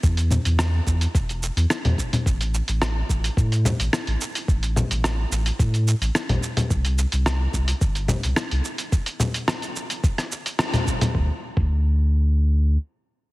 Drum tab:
HH |-x-x---x-x-x-x-x|-x-x---x-x-x-x-x|-x-x---x-x-x-x-x|-x-x---x-x-x-x-x|
SH |xxxxx-xxxxxxx-xx|xxxxx-xxxxxxx-xx|xxxxx-xxxxxxx-xx|xxxxx-xxxxxxx-xx|
SD |----r-------r---|----r-------r---|----r-------r---|----r-------r---|
CG |--O----------O-O|----------O-----|--O----------O-O|----------O-----|
BD |o-----o-o-----o-|o-----o-o-------|o-------o-------|o-----o-o-------|

HH |-x-x-x-x-x-x-x-x|----------------|
SH |xxxxxxxxxxxxxxxx|----------------|
SD |----r----r--r---|----------------|
CG |--O----------O-O|----------------|
BD |o-------o-----o-|o--o------------|